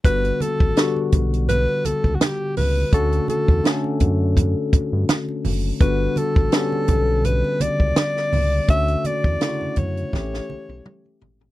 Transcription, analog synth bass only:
X:1
M:4/4
L:1/16
Q:"Swing 16ths" 1/4=83
K:Glyd
V:1 name="Analog synth bass" clef=bass
G,,,2 z A,,, z2 B,,,4 C,, C,, z2 C,,2 | D,,2 z E,, z2 F,,4 G,, G,, z2 F,,,2 | G,,,2 z A,,, z2 B,,,4 C,, C,, z2 C,,2 | D,,2 z E,, z F,, F,,2 A,,,2 B,,, B,,, z2 ^G,,,2 |]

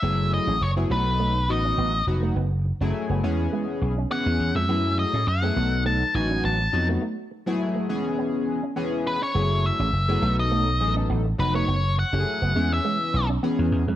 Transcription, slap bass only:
X:1
M:4/4
L:1/16
Q:1/4=103
K:F#dor
V:1 name="Slap bass" clef=bass
F,,,3 A,,, F,,,2 B,,,4 A,,,2 A,,,2 ^E,,,2 | F,,,3 F,,, z F,,, E,,2 z2 B,,,2 z E,, E,, ^E,, | F,,3 A,, F,,2 B,,,4 A,,,2 A,,,2 ^E,,2 | z16 |
F,,,3 A,,, F,,,2 B,,,4 A,,,2 A,,,2 ^E,,,2 | F,,,3 F,,, z F,,, E,,2 z2 B,,,2 z E,, E,, ^E,, |]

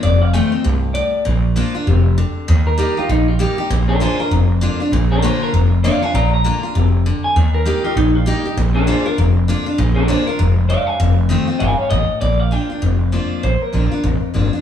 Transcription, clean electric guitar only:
X:1
M:4/4
L:1/8
Q:"Swing" 1/4=197
K:Bb
V:1 name="Clean electric guitar"
d f g3 f d2 | z8 | [K:Bbmix] z B2 F E F E2 | z [DB] [Ac] B z4 |
z [DB] [Ac] B z2 [df] [fa] | [db] b4 z2 a | z B2 F E F E2 | z [DB] [Ac] B z4 |
z [DB] [Ac] B z2 [df] [fa] | z4 [fa] [_df] e2 | [K:Bb] d f g3 f d2 | c B4 z3 |]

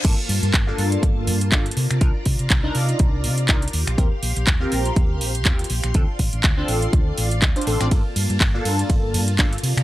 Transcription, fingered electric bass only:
X:1
M:4/4
L:1/16
Q:"Swing 16ths" 1/4=122
K:Gm
V:1 name="Fingered electric bass" clef=bass
G,,, z G,, G,, G,,, z G,, z G,,,2 G,,2 G,,, z C, C, | C,, z C, C, C,, z C, z C,,2 C,2 C,, z E,, B,,, | E,, z B,,, B,,, z2 B,,, z E,,2 B,,,2 E,, z B,,, B,,, | z2 A,,, A,,, D,, z A,,, z D,, z A,,,2 D,, z A,,, A,,, |
z2 G,, G,, G,,, z G,, z G,,,2 G,,2 G,,, z C, C, |]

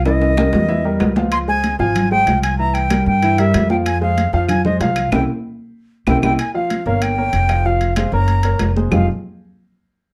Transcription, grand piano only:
X:1
M:4/4
L:1/8
Q:1/4=190
K:Fm
V:1 name="Grand piano"
[=E,=E^d]2 [G,GB]2 [E,E=e] [G,GB]2 [F,Ff]- | [F,Ff] [A,Ac]2 [F,Ff]2 [A,Ac] [F,Ff]2 | [=E,=E=e]2 [G,GB]2 [E,Ee] [G,GB]2 [F,Ff]- | [F,Ff] [A,Ac]2 [F,Ff]2 [A,Ac] [F,Ff]2 |
[C=EG] z4 z [CEG] [CEG] | z [F,Ff]2 [B,Bd]2 [B,Bd]2 [F,Ff] | [F,Ff]2 [A,Ac] [B,Bd]2 [B,Bd]2 [A,Ac] | [F,CEFGA] z6 z |]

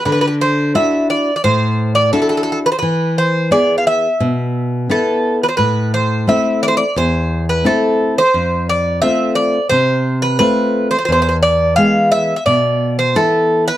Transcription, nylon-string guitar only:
X:1
M:4/4
L:1/8
Q:1/4=87
K:Ephr
V:1 name="Nylon-string guitar"
D,2 [DE^F]2 A,,2 [DEF]2 | E,2 [B,E^G]2 B,,2 [B,EB]2 | A,,2 [A,CE]2 E,,2 [A,CE]2 | F,,2 [A,CF]2 C,2 [A,CF]2 |
E,,2 [E,^G,B,]2 B,,2 [E,B,E]2 |]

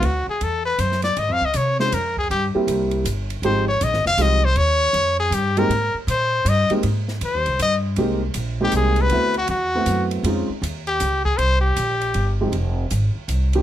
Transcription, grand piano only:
X:1
M:3/4
L:1/8
Q:"Swing" 1/4=158
K:Ab
V:1 name="Grand piano"
z6 | z3 [A,DEFc] z2 | z [G,B,C=EG]3 z2 | [F,A,CEG] z3 [F,A,CEG] z |
z4 z [A,B,CEG] | z4 z [A,B,CEG] | z6 | [A,B,CEG] z2 [A,B,CEG]3 |
[=A,=B,C=E^F] z2 [A,B,CEF]3 | [A,CDEF] z4 z | z4 z [F,A,CEG] | z4 z [F,B,DEG] |]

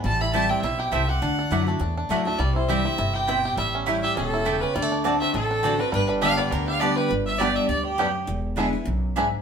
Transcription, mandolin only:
X:1
M:4/4
L:1/8
Q:"Swing" 1/4=204
K:G
V:1 name="Mandolin"
z2 [A,Ecg] z3 [A,Ecg] z | z2 [A,Edf] z3 [A,Edf] z | z2 [CEcg] z3 [CEcg] z | z2 [A,E^cg] z3 [A,Ecg] z |
z2 [CFda] z3 [CFda] z | z2 [B,Gda] z3 [B,Gda] z | z2 [B,Gdg] z3 [B,Gdg] z | z2 [D^Geb] z3 [DGeb] z |]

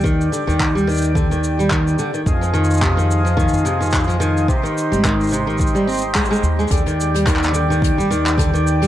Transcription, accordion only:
X:1
M:4/4
L:1/8
Q:"Swing 16ths" 1/4=108
K:Eb
V:1 name="Accordion"
[Gd]8 | [F,FAe]8 | [EGc]8 | [Gd]8 |]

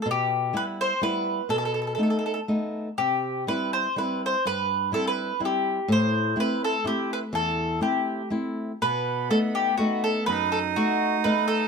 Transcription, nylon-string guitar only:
X:1
M:3/4
L:1/8
Q:"Swing" 1/4=124
K:Bphr
V:1 name="Nylon-string guitar"
B,,2 [G,B,E]2 [G,B,E]2 | B,,2 [A,B,^D]2 [A,B,D]2 | C,2 [G,CE]2 [G,CE]2 | G,,2 [G,CE]2 [G,CE]2 |
A,,2 [A,CE]2 [A,CE]2 | E,,2 [A,CE]2 [A,CE]2 | B,,2 [A,B,^D]2 [A,B,D]2 | F,,2 [A,B,^D]2 [A,B,D]2 |]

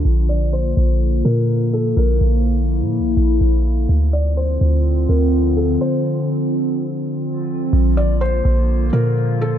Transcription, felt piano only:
X:1
M:4/4
L:1/8
Q:1/4=125
K:Bblyd
V:1 name="Felt piano"
z d c3 B2 A | B2 z6 | z d c3 B2 A | c2 z6 |
z d c3 B2 A |]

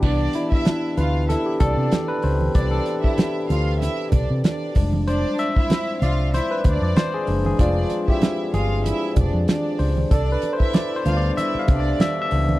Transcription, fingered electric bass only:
X:1
M:4/4
L:1/16
Q:"Swing 16ths" 1/4=95
K:C
V:1 name="Fingered electric bass" clef=bass
C,,2 z4 D,,3 z C,, C, z2 _D,,2 | C,,2 z4 D,,3 z C,, C, z2 F,,,2- | F,,,2 z4 C,,3 z D,, F,, z2 ^F,,,2 | F,,,2 z4 G,,,3 z F,,, F,, z2 _D,,2 |
C,,2 z4 D,,2 z2 C,,2 z2 _D,,2 |]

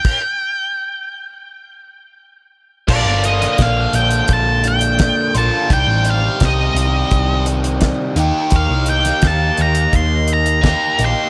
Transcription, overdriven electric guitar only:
X:1
M:4/4
L:1/8
Q:1/4=85
K:Bb
V:1 name="Overdriven electric guitar"
z8 | [B,,D,B,DF]6- [B,,D,B,DF] [B,,D,B,DF] | [C,E,G,CG]6- [C,E,G,CG] [E,B,EG]- | [E,B,EG]6 [E,B,EG] [E,B,EG] |]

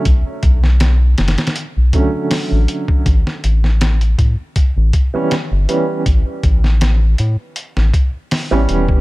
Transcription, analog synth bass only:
X:1
M:4/4
L:1/16
Q:"Swing 16ths" 1/4=80
K:Amix
V:1 name="Analog synth bass" clef=bass
B,,, z B,,,4 F,,, z2 B,,, z3 A,,, z2 | A,,, z A,,,4 A,, z2 A,,, z3 G,,, z2 | A,,, z A,,,4 A,, z2 A,,, z3 A,,, E,,,2 |]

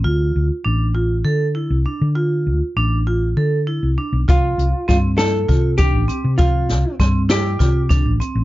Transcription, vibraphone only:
X:1
M:7/8
L:1/8
Q:1/4=99
K:Dm
V:1 name="Vibraphone"
F2 D F A E D | F2 D F A E D | F2 C E F D C | F2 C E F D C |]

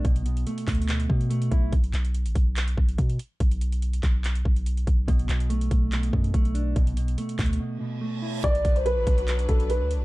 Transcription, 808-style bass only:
X:1
M:4/4
L:1/16
Q:1/4=143
K:Bm
V:1 name="808-style bass" clef=bass
B,,,4 z2 D,,4 B,,4 B,,,2 | B,,,2 B,,,3 A,,, B,,,4 B,,,2 B,,2 z2 | B,,,6 B,,,4 B,,,4 B,,,2 | B,,,2 B,,,4 B,,,4 F,,2 B,,,4 |
B,,,4 z2 D,,2 z8 | B,,,2 B,,,3 A,,, B,,,4 B,,,3 D,,3/2 B,,,3/2 |]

